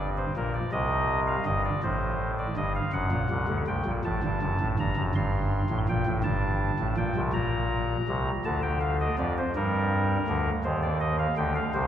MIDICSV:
0, 0, Header, 1, 2, 480
1, 0, Start_track
1, 0, Tempo, 734394
1, 1925, Time_signature, 12, 3, 24, 8
1, 7760, End_track
2, 0, Start_track
2, 0, Title_t, "Pipe organ"
2, 0, Program_c, 0, 19
2, 0, Note_on_c, 0, 31, 63
2, 0, Note_on_c, 0, 43, 60
2, 0, Note_on_c, 0, 74, 54
2, 65, Note_off_c, 0, 74, 0
2, 112, Note_on_c, 0, 72, 55
2, 168, Note_off_c, 0, 31, 0
2, 169, Note_off_c, 0, 43, 0
2, 218, Note_off_c, 0, 72, 0
2, 239, Note_on_c, 0, 46, 52
2, 241, Note_on_c, 0, 70, 49
2, 242, Note_on_c, 0, 34, 56
2, 343, Note_off_c, 0, 70, 0
2, 353, Note_on_c, 0, 74, 54
2, 388, Note_off_c, 0, 46, 0
2, 390, Note_off_c, 0, 34, 0
2, 459, Note_off_c, 0, 74, 0
2, 472, Note_on_c, 0, 48, 70
2, 473, Note_on_c, 0, 36, 61
2, 473, Note_on_c, 0, 75, 57
2, 786, Note_off_c, 0, 75, 0
2, 833, Note_on_c, 0, 77, 60
2, 889, Note_off_c, 0, 48, 0
2, 890, Note_off_c, 0, 36, 0
2, 940, Note_off_c, 0, 77, 0
2, 951, Note_on_c, 0, 43, 67
2, 953, Note_on_c, 0, 75, 57
2, 957, Note_on_c, 0, 31, 59
2, 1060, Note_off_c, 0, 75, 0
2, 1079, Note_on_c, 0, 74, 54
2, 1104, Note_off_c, 0, 43, 0
2, 1108, Note_off_c, 0, 31, 0
2, 1184, Note_off_c, 0, 74, 0
2, 1199, Note_on_c, 0, 33, 62
2, 1199, Note_on_c, 0, 72, 56
2, 1200, Note_on_c, 0, 45, 65
2, 1512, Note_off_c, 0, 72, 0
2, 1561, Note_on_c, 0, 74, 50
2, 1615, Note_off_c, 0, 33, 0
2, 1616, Note_off_c, 0, 45, 0
2, 1666, Note_off_c, 0, 74, 0
2, 1676, Note_on_c, 0, 75, 58
2, 1677, Note_on_c, 0, 43, 62
2, 1679, Note_on_c, 0, 31, 63
2, 1783, Note_off_c, 0, 75, 0
2, 1800, Note_on_c, 0, 77, 55
2, 1828, Note_off_c, 0, 43, 0
2, 1829, Note_off_c, 0, 31, 0
2, 1905, Note_off_c, 0, 77, 0
2, 1915, Note_on_c, 0, 30, 55
2, 1915, Note_on_c, 0, 42, 59
2, 1916, Note_on_c, 0, 78, 68
2, 2023, Note_off_c, 0, 30, 0
2, 2023, Note_off_c, 0, 42, 0
2, 2036, Note_on_c, 0, 46, 56
2, 2040, Note_on_c, 0, 34, 57
2, 2143, Note_off_c, 0, 46, 0
2, 2145, Note_off_c, 0, 34, 0
2, 2156, Note_on_c, 0, 36, 53
2, 2157, Note_on_c, 0, 48, 55
2, 2263, Note_off_c, 0, 36, 0
2, 2264, Note_off_c, 0, 48, 0
2, 2276, Note_on_c, 0, 38, 55
2, 2276, Note_on_c, 0, 50, 54
2, 2333, Note_off_c, 0, 78, 0
2, 2383, Note_off_c, 0, 38, 0
2, 2383, Note_off_c, 0, 50, 0
2, 2399, Note_on_c, 0, 48, 50
2, 2401, Note_on_c, 0, 36, 50
2, 2403, Note_on_c, 0, 79, 60
2, 2505, Note_off_c, 0, 48, 0
2, 2506, Note_off_c, 0, 36, 0
2, 2519, Note_on_c, 0, 46, 54
2, 2520, Note_on_c, 0, 34, 51
2, 2552, Note_off_c, 0, 79, 0
2, 2625, Note_off_c, 0, 46, 0
2, 2626, Note_off_c, 0, 34, 0
2, 2645, Note_on_c, 0, 33, 59
2, 2645, Note_on_c, 0, 45, 51
2, 2646, Note_on_c, 0, 81, 66
2, 2748, Note_off_c, 0, 33, 0
2, 2748, Note_off_c, 0, 45, 0
2, 2767, Note_on_c, 0, 31, 50
2, 2771, Note_on_c, 0, 43, 48
2, 2869, Note_off_c, 0, 31, 0
2, 2871, Note_off_c, 0, 43, 0
2, 2890, Note_on_c, 0, 30, 53
2, 2890, Note_on_c, 0, 42, 53
2, 2991, Note_off_c, 0, 30, 0
2, 2991, Note_off_c, 0, 42, 0
2, 3010, Note_on_c, 0, 33, 55
2, 3010, Note_on_c, 0, 45, 51
2, 3057, Note_off_c, 0, 81, 0
2, 3110, Note_off_c, 0, 33, 0
2, 3110, Note_off_c, 0, 45, 0
2, 3131, Note_on_c, 0, 31, 49
2, 3132, Note_on_c, 0, 43, 51
2, 3134, Note_on_c, 0, 82, 57
2, 3231, Note_off_c, 0, 31, 0
2, 3231, Note_off_c, 0, 43, 0
2, 3244, Note_on_c, 0, 42, 52
2, 3246, Note_on_c, 0, 30, 53
2, 3279, Note_off_c, 0, 82, 0
2, 3347, Note_off_c, 0, 42, 0
2, 3348, Note_off_c, 0, 30, 0
2, 3365, Note_on_c, 0, 31, 56
2, 3366, Note_on_c, 0, 43, 58
2, 3366, Note_on_c, 0, 84, 70
2, 3674, Note_off_c, 0, 31, 0
2, 3675, Note_off_c, 0, 43, 0
2, 3726, Note_on_c, 0, 33, 57
2, 3726, Note_on_c, 0, 45, 57
2, 3778, Note_off_c, 0, 84, 0
2, 3828, Note_off_c, 0, 33, 0
2, 3828, Note_off_c, 0, 45, 0
2, 3849, Note_on_c, 0, 79, 61
2, 3850, Note_on_c, 0, 34, 59
2, 3850, Note_on_c, 0, 46, 56
2, 3950, Note_off_c, 0, 34, 0
2, 3951, Note_off_c, 0, 46, 0
2, 3963, Note_on_c, 0, 45, 58
2, 3964, Note_on_c, 0, 33, 57
2, 3996, Note_off_c, 0, 79, 0
2, 4067, Note_off_c, 0, 33, 0
2, 4067, Note_off_c, 0, 45, 0
2, 4075, Note_on_c, 0, 81, 71
2, 4076, Note_on_c, 0, 31, 54
2, 4076, Note_on_c, 0, 43, 58
2, 4389, Note_off_c, 0, 31, 0
2, 4389, Note_off_c, 0, 43, 0
2, 4440, Note_on_c, 0, 33, 47
2, 4442, Note_on_c, 0, 45, 48
2, 4491, Note_off_c, 0, 81, 0
2, 4545, Note_off_c, 0, 33, 0
2, 4546, Note_off_c, 0, 45, 0
2, 4554, Note_on_c, 0, 46, 58
2, 4557, Note_on_c, 0, 79, 69
2, 4559, Note_on_c, 0, 34, 58
2, 4661, Note_off_c, 0, 46, 0
2, 4664, Note_off_c, 0, 34, 0
2, 4678, Note_on_c, 0, 36, 56
2, 4682, Note_on_c, 0, 48, 55
2, 4707, Note_off_c, 0, 79, 0
2, 4783, Note_off_c, 0, 36, 0
2, 4785, Note_off_c, 0, 48, 0
2, 4792, Note_on_c, 0, 34, 68
2, 4794, Note_on_c, 0, 82, 65
2, 4796, Note_on_c, 0, 46, 71
2, 5208, Note_off_c, 0, 34, 0
2, 5211, Note_off_c, 0, 46, 0
2, 5281, Note_on_c, 0, 36, 63
2, 5283, Note_on_c, 0, 48, 61
2, 5415, Note_off_c, 0, 82, 0
2, 5430, Note_off_c, 0, 36, 0
2, 5431, Note_off_c, 0, 48, 0
2, 5522, Note_on_c, 0, 81, 66
2, 5524, Note_on_c, 0, 38, 69
2, 5526, Note_on_c, 0, 50, 72
2, 5624, Note_off_c, 0, 81, 0
2, 5637, Note_on_c, 0, 79, 64
2, 5740, Note_off_c, 0, 79, 0
2, 5756, Note_on_c, 0, 77, 57
2, 5860, Note_off_c, 0, 77, 0
2, 5887, Note_on_c, 0, 75, 63
2, 5933, Note_off_c, 0, 38, 0
2, 5934, Note_off_c, 0, 50, 0
2, 5986, Note_off_c, 0, 75, 0
2, 6003, Note_on_c, 0, 53, 66
2, 6004, Note_on_c, 0, 74, 51
2, 6005, Note_on_c, 0, 41, 62
2, 6104, Note_off_c, 0, 74, 0
2, 6130, Note_on_c, 0, 72, 65
2, 6149, Note_off_c, 0, 53, 0
2, 6151, Note_off_c, 0, 41, 0
2, 6227, Note_off_c, 0, 72, 0
2, 6243, Note_on_c, 0, 55, 80
2, 6246, Note_on_c, 0, 43, 70
2, 6247, Note_on_c, 0, 70, 69
2, 6651, Note_off_c, 0, 55, 0
2, 6652, Note_off_c, 0, 43, 0
2, 6719, Note_on_c, 0, 38, 74
2, 6724, Note_on_c, 0, 50, 67
2, 6859, Note_off_c, 0, 70, 0
2, 6866, Note_off_c, 0, 38, 0
2, 6870, Note_off_c, 0, 50, 0
2, 6953, Note_on_c, 0, 72, 58
2, 6954, Note_on_c, 0, 39, 74
2, 6957, Note_on_c, 0, 51, 67
2, 7056, Note_off_c, 0, 72, 0
2, 7076, Note_on_c, 0, 74, 59
2, 7178, Note_off_c, 0, 74, 0
2, 7192, Note_on_c, 0, 75, 63
2, 7296, Note_off_c, 0, 75, 0
2, 7315, Note_on_c, 0, 77, 62
2, 7366, Note_off_c, 0, 39, 0
2, 7368, Note_off_c, 0, 51, 0
2, 7417, Note_off_c, 0, 77, 0
2, 7431, Note_on_c, 0, 38, 82
2, 7434, Note_on_c, 0, 50, 78
2, 7434, Note_on_c, 0, 79, 63
2, 7537, Note_off_c, 0, 79, 0
2, 7553, Note_on_c, 0, 77, 64
2, 7580, Note_off_c, 0, 38, 0
2, 7582, Note_off_c, 0, 50, 0
2, 7656, Note_off_c, 0, 77, 0
2, 7672, Note_on_c, 0, 72, 76
2, 7675, Note_on_c, 0, 36, 66
2, 7676, Note_on_c, 0, 48, 64
2, 7760, Note_off_c, 0, 36, 0
2, 7760, Note_off_c, 0, 48, 0
2, 7760, Note_off_c, 0, 72, 0
2, 7760, End_track
0, 0, End_of_file